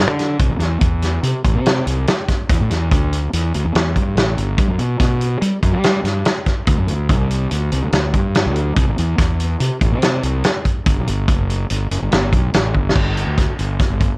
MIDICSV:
0, 0, Header, 1, 3, 480
1, 0, Start_track
1, 0, Key_signature, 1, "major"
1, 0, Tempo, 418702
1, 464, Time_signature, 5, 2, 24, 8
1, 16253, End_track
2, 0, Start_track
2, 0, Title_t, "Fingered electric bass"
2, 0, Program_c, 0, 33
2, 85, Note_on_c, 0, 50, 91
2, 405, Note_off_c, 0, 50, 0
2, 452, Note_on_c, 0, 36, 87
2, 561, Note_off_c, 0, 36, 0
2, 567, Note_on_c, 0, 33, 84
2, 667, Note_off_c, 0, 33, 0
2, 673, Note_on_c, 0, 40, 94
2, 894, Note_off_c, 0, 40, 0
2, 930, Note_on_c, 0, 40, 85
2, 1350, Note_off_c, 0, 40, 0
2, 1411, Note_on_c, 0, 48, 95
2, 1519, Note_off_c, 0, 48, 0
2, 1660, Note_on_c, 0, 33, 85
2, 1775, Note_on_c, 0, 48, 78
2, 1792, Note_off_c, 0, 33, 0
2, 2088, Note_off_c, 0, 48, 0
2, 2138, Note_on_c, 0, 36, 83
2, 2346, Note_off_c, 0, 36, 0
2, 2860, Note_on_c, 0, 40, 81
2, 2963, Note_off_c, 0, 40, 0
2, 2987, Note_on_c, 0, 45, 84
2, 3087, Note_off_c, 0, 45, 0
2, 3098, Note_on_c, 0, 40, 84
2, 3341, Note_off_c, 0, 40, 0
2, 3341, Note_on_c, 0, 38, 90
2, 3754, Note_off_c, 0, 38, 0
2, 3820, Note_on_c, 0, 40, 84
2, 4025, Note_off_c, 0, 40, 0
2, 4066, Note_on_c, 0, 38, 83
2, 4165, Note_off_c, 0, 38, 0
2, 4182, Note_on_c, 0, 40, 76
2, 4283, Note_off_c, 0, 40, 0
2, 4299, Note_on_c, 0, 40, 88
2, 4504, Note_off_c, 0, 40, 0
2, 4542, Note_on_c, 0, 43, 82
2, 4755, Note_off_c, 0, 43, 0
2, 4762, Note_on_c, 0, 33, 79
2, 4983, Note_off_c, 0, 33, 0
2, 5008, Note_on_c, 0, 31, 77
2, 5226, Note_off_c, 0, 31, 0
2, 5256, Note_on_c, 0, 43, 82
2, 5359, Note_off_c, 0, 43, 0
2, 5368, Note_on_c, 0, 42, 81
2, 5474, Note_off_c, 0, 42, 0
2, 5485, Note_on_c, 0, 47, 90
2, 5696, Note_off_c, 0, 47, 0
2, 5733, Note_on_c, 0, 47, 87
2, 6148, Note_off_c, 0, 47, 0
2, 6208, Note_on_c, 0, 55, 93
2, 6314, Note_off_c, 0, 55, 0
2, 6455, Note_on_c, 0, 42, 87
2, 6559, Note_on_c, 0, 55, 78
2, 6576, Note_off_c, 0, 42, 0
2, 6876, Note_off_c, 0, 55, 0
2, 6919, Note_on_c, 0, 43, 77
2, 7133, Note_off_c, 0, 43, 0
2, 7650, Note_on_c, 0, 38, 92
2, 7755, Note_off_c, 0, 38, 0
2, 7770, Note_on_c, 0, 42, 90
2, 7868, Note_off_c, 0, 42, 0
2, 7875, Note_on_c, 0, 38, 84
2, 8131, Note_on_c, 0, 36, 92
2, 8149, Note_off_c, 0, 38, 0
2, 8547, Note_off_c, 0, 36, 0
2, 8614, Note_on_c, 0, 38, 82
2, 8821, Note_off_c, 0, 38, 0
2, 8855, Note_on_c, 0, 36, 84
2, 8958, Note_off_c, 0, 36, 0
2, 8975, Note_on_c, 0, 38, 77
2, 9078, Note_off_c, 0, 38, 0
2, 9087, Note_on_c, 0, 38, 93
2, 9297, Note_off_c, 0, 38, 0
2, 9333, Note_on_c, 0, 43, 84
2, 9700, Note_on_c, 0, 38, 82
2, 9718, Note_off_c, 0, 43, 0
2, 10009, Note_off_c, 0, 38, 0
2, 10050, Note_on_c, 0, 36, 92
2, 10155, Note_off_c, 0, 36, 0
2, 10177, Note_on_c, 0, 33, 80
2, 10280, Note_off_c, 0, 33, 0
2, 10304, Note_on_c, 0, 40, 93
2, 10507, Note_off_c, 0, 40, 0
2, 10530, Note_on_c, 0, 40, 83
2, 10948, Note_off_c, 0, 40, 0
2, 11009, Note_on_c, 0, 48, 90
2, 11115, Note_off_c, 0, 48, 0
2, 11253, Note_on_c, 0, 33, 92
2, 11369, Note_on_c, 0, 48, 76
2, 11386, Note_off_c, 0, 33, 0
2, 11683, Note_off_c, 0, 48, 0
2, 11730, Note_on_c, 0, 36, 87
2, 11940, Note_off_c, 0, 36, 0
2, 12455, Note_on_c, 0, 31, 83
2, 12559, Note_off_c, 0, 31, 0
2, 12577, Note_on_c, 0, 35, 84
2, 12680, Note_off_c, 0, 35, 0
2, 12697, Note_on_c, 0, 31, 86
2, 12930, Note_off_c, 0, 31, 0
2, 12930, Note_on_c, 0, 30, 97
2, 13349, Note_off_c, 0, 30, 0
2, 13421, Note_on_c, 0, 31, 84
2, 13627, Note_off_c, 0, 31, 0
2, 13656, Note_on_c, 0, 30, 77
2, 13761, Note_off_c, 0, 30, 0
2, 13785, Note_on_c, 0, 31, 77
2, 13886, Note_off_c, 0, 31, 0
2, 13907, Note_on_c, 0, 31, 89
2, 14111, Note_off_c, 0, 31, 0
2, 14129, Note_on_c, 0, 35, 76
2, 14350, Note_off_c, 0, 35, 0
2, 14382, Note_on_c, 0, 33, 73
2, 14597, Note_off_c, 0, 33, 0
2, 14617, Note_on_c, 0, 31, 74
2, 14835, Note_off_c, 0, 31, 0
2, 14848, Note_on_c, 0, 31, 80
2, 15166, Note_off_c, 0, 31, 0
2, 15209, Note_on_c, 0, 38, 81
2, 15422, Note_off_c, 0, 38, 0
2, 15577, Note_on_c, 0, 31, 75
2, 15788, Note_off_c, 0, 31, 0
2, 15935, Note_on_c, 0, 31, 83
2, 16147, Note_off_c, 0, 31, 0
2, 16253, End_track
3, 0, Start_track
3, 0, Title_t, "Drums"
3, 216, Note_on_c, 9, 42, 57
3, 228, Note_on_c, 9, 38, 30
3, 331, Note_off_c, 9, 42, 0
3, 342, Note_off_c, 9, 38, 0
3, 451, Note_on_c, 9, 42, 79
3, 453, Note_on_c, 9, 36, 104
3, 565, Note_off_c, 9, 42, 0
3, 568, Note_off_c, 9, 36, 0
3, 688, Note_on_c, 9, 42, 56
3, 699, Note_on_c, 9, 38, 31
3, 802, Note_off_c, 9, 42, 0
3, 814, Note_off_c, 9, 38, 0
3, 927, Note_on_c, 9, 42, 77
3, 932, Note_on_c, 9, 36, 96
3, 1042, Note_off_c, 9, 42, 0
3, 1047, Note_off_c, 9, 36, 0
3, 1171, Note_on_c, 9, 42, 60
3, 1183, Note_on_c, 9, 38, 33
3, 1286, Note_off_c, 9, 42, 0
3, 1297, Note_off_c, 9, 38, 0
3, 1414, Note_on_c, 9, 42, 80
3, 1529, Note_off_c, 9, 42, 0
3, 1657, Note_on_c, 9, 36, 74
3, 1659, Note_on_c, 9, 42, 68
3, 1772, Note_off_c, 9, 36, 0
3, 1774, Note_off_c, 9, 42, 0
3, 1900, Note_on_c, 9, 42, 79
3, 1911, Note_on_c, 9, 38, 93
3, 2014, Note_off_c, 9, 42, 0
3, 2026, Note_off_c, 9, 38, 0
3, 2141, Note_on_c, 9, 42, 66
3, 2256, Note_off_c, 9, 42, 0
3, 2376, Note_on_c, 9, 42, 86
3, 2388, Note_on_c, 9, 38, 100
3, 2491, Note_off_c, 9, 42, 0
3, 2502, Note_off_c, 9, 38, 0
3, 2617, Note_on_c, 9, 42, 69
3, 2618, Note_on_c, 9, 36, 65
3, 2628, Note_on_c, 9, 38, 32
3, 2731, Note_off_c, 9, 42, 0
3, 2733, Note_off_c, 9, 36, 0
3, 2743, Note_off_c, 9, 38, 0
3, 2857, Note_on_c, 9, 42, 94
3, 2859, Note_on_c, 9, 36, 111
3, 2971, Note_off_c, 9, 42, 0
3, 2974, Note_off_c, 9, 36, 0
3, 3102, Note_on_c, 9, 42, 63
3, 3113, Note_on_c, 9, 38, 31
3, 3216, Note_off_c, 9, 42, 0
3, 3228, Note_off_c, 9, 38, 0
3, 3341, Note_on_c, 9, 36, 99
3, 3342, Note_on_c, 9, 42, 85
3, 3455, Note_off_c, 9, 36, 0
3, 3457, Note_off_c, 9, 42, 0
3, 3583, Note_on_c, 9, 42, 65
3, 3698, Note_off_c, 9, 42, 0
3, 3819, Note_on_c, 9, 42, 82
3, 3933, Note_off_c, 9, 42, 0
3, 4059, Note_on_c, 9, 42, 65
3, 4174, Note_off_c, 9, 42, 0
3, 4298, Note_on_c, 9, 42, 76
3, 4310, Note_on_c, 9, 38, 101
3, 4413, Note_off_c, 9, 42, 0
3, 4425, Note_off_c, 9, 38, 0
3, 4536, Note_on_c, 9, 36, 69
3, 4540, Note_on_c, 9, 42, 62
3, 4651, Note_off_c, 9, 36, 0
3, 4654, Note_off_c, 9, 42, 0
3, 4779, Note_on_c, 9, 42, 72
3, 4790, Note_on_c, 9, 38, 96
3, 4894, Note_off_c, 9, 42, 0
3, 4905, Note_off_c, 9, 38, 0
3, 5020, Note_on_c, 9, 42, 59
3, 5134, Note_off_c, 9, 42, 0
3, 5250, Note_on_c, 9, 42, 82
3, 5252, Note_on_c, 9, 36, 102
3, 5364, Note_off_c, 9, 42, 0
3, 5367, Note_off_c, 9, 36, 0
3, 5490, Note_on_c, 9, 42, 60
3, 5605, Note_off_c, 9, 42, 0
3, 5730, Note_on_c, 9, 36, 94
3, 5730, Note_on_c, 9, 42, 84
3, 5741, Note_on_c, 9, 38, 32
3, 5845, Note_off_c, 9, 36, 0
3, 5845, Note_off_c, 9, 42, 0
3, 5856, Note_off_c, 9, 38, 0
3, 5971, Note_on_c, 9, 42, 63
3, 6085, Note_off_c, 9, 42, 0
3, 6209, Note_on_c, 9, 42, 80
3, 6324, Note_off_c, 9, 42, 0
3, 6450, Note_on_c, 9, 36, 76
3, 6451, Note_on_c, 9, 42, 68
3, 6564, Note_off_c, 9, 36, 0
3, 6565, Note_off_c, 9, 42, 0
3, 6688, Note_on_c, 9, 42, 80
3, 6699, Note_on_c, 9, 38, 97
3, 6803, Note_off_c, 9, 42, 0
3, 6814, Note_off_c, 9, 38, 0
3, 6933, Note_on_c, 9, 42, 70
3, 6944, Note_on_c, 9, 38, 34
3, 7048, Note_off_c, 9, 42, 0
3, 7059, Note_off_c, 9, 38, 0
3, 7166, Note_on_c, 9, 42, 83
3, 7177, Note_on_c, 9, 38, 104
3, 7280, Note_off_c, 9, 42, 0
3, 7292, Note_off_c, 9, 38, 0
3, 7405, Note_on_c, 9, 42, 64
3, 7409, Note_on_c, 9, 36, 67
3, 7417, Note_on_c, 9, 38, 31
3, 7520, Note_off_c, 9, 42, 0
3, 7524, Note_off_c, 9, 36, 0
3, 7531, Note_off_c, 9, 38, 0
3, 7643, Note_on_c, 9, 42, 91
3, 7649, Note_on_c, 9, 36, 103
3, 7758, Note_off_c, 9, 42, 0
3, 7763, Note_off_c, 9, 36, 0
3, 7887, Note_on_c, 9, 42, 63
3, 8001, Note_off_c, 9, 42, 0
3, 8130, Note_on_c, 9, 36, 101
3, 8130, Note_on_c, 9, 42, 77
3, 8245, Note_off_c, 9, 36, 0
3, 8245, Note_off_c, 9, 42, 0
3, 8373, Note_on_c, 9, 42, 62
3, 8488, Note_off_c, 9, 42, 0
3, 8607, Note_on_c, 9, 42, 78
3, 8722, Note_off_c, 9, 42, 0
3, 8847, Note_on_c, 9, 42, 62
3, 8962, Note_off_c, 9, 42, 0
3, 9086, Note_on_c, 9, 42, 77
3, 9097, Note_on_c, 9, 38, 92
3, 9200, Note_off_c, 9, 42, 0
3, 9212, Note_off_c, 9, 38, 0
3, 9329, Note_on_c, 9, 42, 60
3, 9331, Note_on_c, 9, 36, 69
3, 9444, Note_off_c, 9, 42, 0
3, 9445, Note_off_c, 9, 36, 0
3, 9570, Note_on_c, 9, 42, 79
3, 9581, Note_on_c, 9, 38, 99
3, 9685, Note_off_c, 9, 42, 0
3, 9696, Note_off_c, 9, 38, 0
3, 9811, Note_on_c, 9, 42, 58
3, 9925, Note_off_c, 9, 42, 0
3, 10049, Note_on_c, 9, 42, 82
3, 10050, Note_on_c, 9, 36, 105
3, 10164, Note_off_c, 9, 42, 0
3, 10165, Note_off_c, 9, 36, 0
3, 10295, Note_on_c, 9, 42, 62
3, 10409, Note_off_c, 9, 42, 0
3, 10528, Note_on_c, 9, 42, 85
3, 10531, Note_on_c, 9, 36, 96
3, 10539, Note_on_c, 9, 38, 33
3, 10642, Note_off_c, 9, 42, 0
3, 10645, Note_off_c, 9, 36, 0
3, 10654, Note_off_c, 9, 38, 0
3, 10775, Note_on_c, 9, 42, 62
3, 10889, Note_off_c, 9, 42, 0
3, 11009, Note_on_c, 9, 42, 79
3, 11123, Note_off_c, 9, 42, 0
3, 11248, Note_on_c, 9, 42, 67
3, 11250, Note_on_c, 9, 36, 81
3, 11363, Note_off_c, 9, 42, 0
3, 11364, Note_off_c, 9, 36, 0
3, 11487, Note_on_c, 9, 42, 87
3, 11499, Note_on_c, 9, 38, 89
3, 11602, Note_off_c, 9, 42, 0
3, 11613, Note_off_c, 9, 38, 0
3, 11729, Note_on_c, 9, 42, 65
3, 11843, Note_off_c, 9, 42, 0
3, 11966, Note_on_c, 9, 42, 87
3, 11977, Note_on_c, 9, 38, 103
3, 12080, Note_off_c, 9, 42, 0
3, 12092, Note_off_c, 9, 38, 0
3, 12211, Note_on_c, 9, 36, 65
3, 12212, Note_on_c, 9, 42, 59
3, 12326, Note_off_c, 9, 36, 0
3, 12326, Note_off_c, 9, 42, 0
3, 12453, Note_on_c, 9, 36, 103
3, 12455, Note_on_c, 9, 42, 81
3, 12567, Note_off_c, 9, 36, 0
3, 12569, Note_off_c, 9, 42, 0
3, 12696, Note_on_c, 9, 42, 60
3, 12811, Note_off_c, 9, 42, 0
3, 12933, Note_on_c, 9, 36, 98
3, 12933, Note_on_c, 9, 42, 82
3, 13048, Note_off_c, 9, 36, 0
3, 13048, Note_off_c, 9, 42, 0
3, 13182, Note_on_c, 9, 42, 60
3, 13296, Note_off_c, 9, 42, 0
3, 13412, Note_on_c, 9, 42, 80
3, 13526, Note_off_c, 9, 42, 0
3, 13657, Note_on_c, 9, 42, 64
3, 13772, Note_off_c, 9, 42, 0
3, 13894, Note_on_c, 9, 42, 71
3, 13905, Note_on_c, 9, 38, 94
3, 14009, Note_off_c, 9, 42, 0
3, 14020, Note_off_c, 9, 38, 0
3, 14133, Note_on_c, 9, 36, 69
3, 14137, Note_on_c, 9, 42, 60
3, 14248, Note_off_c, 9, 36, 0
3, 14251, Note_off_c, 9, 42, 0
3, 14373, Note_on_c, 9, 42, 84
3, 14384, Note_on_c, 9, 38, 100
3, 14487, Note_off_c, 9, 42, 0
3, 14499, Note_off_c, 9, 38, 0
3, 14612, Note_on_c, 9, 36, 57
3, 14727, Note_off_c, 9, 36, 0
3, 14782, Note_on_c, 9, 38, 79
3, 14851, Note_on_c, 9, 49, 84
3, 14853, Note_on_c, 9, 36, 92
3, 14897, Note_off_c, 9, 38, 0
3, 14966, Note_off_c, 9, 49, 0
3, 14968, Note_off_c, 9, 36, 0
3, 15097, Note_on_c, 9, 42, 57
3, 15212, Note_off_c, 9, 42, 0
3, 15336, Note_on_c, 9, 36, 85
3, 15336, Note_on_c, 9, 42, 76
3, 15347, Note_on_c, 9, 38, 31
3, 15450, Note_off_c, 9, 36, 0
3, 15451, Note_off_c, 9, 42, 0
3, 15462, Note_off_c, 9, 38, 0
3, 15576, Note_on_c, 9, 42, 57
3, 15691, Note_off_c, 9, 42, 0
3, 15813, Note_on_c, 9, 42, 72
3, 15817, Note_on_c, 9, 36, 90
3, 15824, Note_on_c, 9, 38, 31
3, 15927, Note_off_c, 9, 42, 0
3, 15931, Note_off_c, 9, 36, 0
3, 15939, Note_off_c, 9, 38, 0
3, 16055, Note_on_c, 9, 42, 58
3, 16057, Note_on_c, 9, 36, 71
3, 16170, Note_off_c, 9, 42, 0
3, 16171, Note_off_c, 9, 36, 0
3, 16253, End_track
0, 0, End_of_file